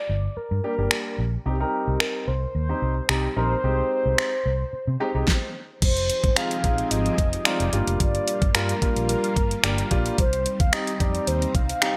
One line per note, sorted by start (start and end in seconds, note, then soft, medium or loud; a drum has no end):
0.00 0.38 D5 loud
0.09 0.27 G1 medium
0.37 0.63 A#4 medium
0.37 muted fingered electric bass stroke soft
0.51 0.59 G2 medium
0.64 0.72 G3 medium
0.64 0.72 A#3 medium
0.64 0.73 D4 medium
0.64 0.73 G4 medium
0.64 1.15 A#4 medium
0.78 0.86 G1 medium
0.78 1.18 G3 medium
0.78 1.18 A#3 medium
0.78 1.18 D4 medium
0.78 1.18 G4 medium
0.91 finger snap loud
1.18 1.36 A#1 medium
1.46 1.63 C2 loud
1.46 1.54 G3 medium
1.46 1.54 C4 medium
1.46 1.54 D#4 medium
1.46 2.02 G4 loud
1.46 1.54 G4 medium
1.60 2.24 G3 medium
1.60 2.24 C4 medium
1.60 2.25 D#4 medium
1.60 2.25 A#4 medium
1.88 1.96 C2 medium
2.00 2.29 A#4 loud
2.00 finger snap loud
2.27 2.45 C2 medium
2.27 2.54 C5 loud
2.55 2.72 D#2 medium
2.55 3.11 C5 loud
2.69 2.93 G3 medium
2.69 2.93 C4 medium
2.69 2.93 D#4 medium
2.69 2.94 G4 medium
2.82 2.99 C2 medium
3.09 3.26 C2 medium
3.09 3.26 G3 medium
3.09 3.26 C4 medium
3.09 3.26 D#4 medium
3.09 3.36 G4 medium
3.09 3.26 G4 medium
3.09 finger snap loud
3.36 3.54 A#1 medium
3.36 3.53 G3 medium
3.36 3.53 C4 medium
3.36 3.54 D#4 medium
3.36 3.54 A#4 medium
3.36 5.51 C5 loud
3.64 3.81 C2 loud
3.64 4.29 G#3 medium
3.64 4.29 C4 medium
3.64 4.29 D#4 medium
3.64 4.30 G4 medium
4.06 4.14 C2 medium
4.18 finger snap loud
4.46 4.63 C2 medium
4.73 muted fingered electric bass stroke soft
4.87 4.95 C3 loud
5.00 5.09 G#3 medium
5.00 5.09 C4 medium
5.00 5.09 D#4 medium
5.00 5.09 G4 loud
5.14 5.23 C2 medium
5.14 5.27 G#3 medium
5.14 5.27 C4 medium
5.14 5.28 D#4 medium
5.14 5.28 G4 medium
5.27 kick loud
5.27 snare medium
5.82 6.08 F1 loud
5.82 7.71 F3 medium
5.82 7.71 C4 medium
5.82 7.71 D#4 medium
5.82 7.71 G4 medium
5.82 7.71 G#4 medium
5.82 6.38 C5 loud
5.82 kick loud
5.82 closed hi-hat loud
5.82 crash loud
5.97 closed hi-hat medium
6.10 closed hi-hat medium
6.24 6.32 G#1 medium
6.24 kick loud
6.24 closed hi-hat medium
6.36 6.53 G#3 medium
6.36 6.53 C4 medium
6.36 6.54 D#4 medium
6.36 6.54 F4 medium
6.36 6.93 F5 loud
6.36 finger snap loud
6.36 closed hi-hat medium
6.51 closed hi-hat medium
6.64 6.81 A#1 medium
6.64 7.13 G#3 medium
6.64 7.13 C4 medium
6.64 7.13 D#4 medium
6.64 7.13 F4 medium
6.64 kick medium
6.64 closed hi-hat medium
6.78 closed hi-hat soft
6.91 7.08 G#1 medium
6.91 7.47 D#5 loud
6.91 closed hi-hat medium
7.06 closed hi-hat soft
7.18 7.35 F1 medium
7.18 kick medium
7.18 closed hi-hat medium
7.33 closed hi-hat medium
7.45 7.62 G#3 medium
7.45 7.63 C4 medium
7.45 7.63 D#4 medium
7.45 7.63 F4 medium
7.45 7.99 D5 loud
7.45 finger snap loud
7.45 closed hi-hat medium
7.60 7.68 F1 medium
7.60 closed hi-hat medium
7.73 7.82 G1 loud
7.73 8.39 G3 medium
7.73 11.97 G3 medium
7.73 8.39 A#3 medium
7.73 10.16 A#3 medium
7.73 8.39 D4 medium
7.73 10.16 F4 medium
7.73 8.39 F4 medium
7.73 closed hi-hat medium
7.87 7.95 F1 medium
7.87 closed hi-hat soft
8.00 8.17 G1 loud
8.00 8.56 D5 loud
8.00 kick loud
8.00 closed hi-hat loud
8.15 closed hi-hat soft
8.28 closed hi-hat medium
8.42 8.50 G2 medium
8.42 kick loud
8.42 closed hi-hat soft
8.55 8.72 G2 loud
8.55 8.72 G3 medium
8.55 8.72 A#3 medium
8.55 8.72 D4 medium
8.55 8.72 F4 medium
8.55 9.09 A#4 medium
8.55 finger snap loud
8.55 closed hi-hat medium
8.69 closed hi-hat medium
8.82 9.31 G3 medium
8.82 9.31 A#3 medium
8.82 9.31 D4 medium
8.82 9.31 F4 medium
8.82 kick medium
8.82 closed hi-hat medium
8.96 9.14 A#1 medium
8.96 closed hi-hat soft
9.09 9.87 A#4 medium
9.09 closed hi-hat medium
9.24 closed hi-hat soft
9.36 9.54 G1 medium
9.36 kick medium
9.36 closed hi-hat medium
9.51 closed hi-hat medium
9.64 9.81 G1 medium
9.64 9.81 G3 medium
9.64 9.81 A#3 medium
9.64 9.81 D4 medium
9.64 9.81 G4 medium
9.64 finger snap loud
9.64 closed hi-hat medium
9.78 closed hi-hat medium
9.91 10.08 A#1 loud
9.91 10.18 G3 loud
9.91 10.18 A#3 medium
9.91 10.18 D4 medium
9.91 10.19 F4 loud
9.91 kick medium
9.91 closed hi-hat medium
10.06 closed hi-hat medium
10.18 10.45 C2 loud
10.18 11.97 C4 medium
10.18 11.97 D#4 medium
10.18 10.62 C5 loud
10.18 kick loud
10.18 closed hi-hat loud
10.33 closed hi-hat medium
10.46 closed hi-hat medium
10.60 10.68 D#2 medium
10.60 10.75 F5 loud
10.60 kick loud
10.60 closed hi-hat soft
10.73 10.90 G3 medium
10.73 10.90 C4 medium
10.73 10.90 D#4 medium
10.73 10.90 G4 medium
10.73 11.02 D#5 loud
10.73 finger snap loud
10.73 closed hi-hat medium
10.87 closed hi-hat medium
11.00 11.17 F2 medium
11.00 11.49 G3 medium
11.00 11.49 C4 medium
11.00 11.49 D#4 medium
11.00 11.49 G4 medium
11.00 11.29 D5 loud
11.00 kick medium
11.00 closed hi-hat medium
11.15 closed hi-hat soft
11.27 11.45 D#2 medium
11.27 11.56 C5 medium
11.27 closed hi-hat medium
11.42 closed hi-hat soft
11.55 11.72 C2 loud
11.55 11.97 F5 loud
11.55 kick medium
11.55 closed hi-hat medium
11.69 closed hi-hat medium
11.82 11.97 G3 medium
11.82 11.97 C4 medium
11.82 11.97 D#4 medium
11.82 11.97 G4 medium
11.82 finger snap loud
11.82 closed hi-hat medium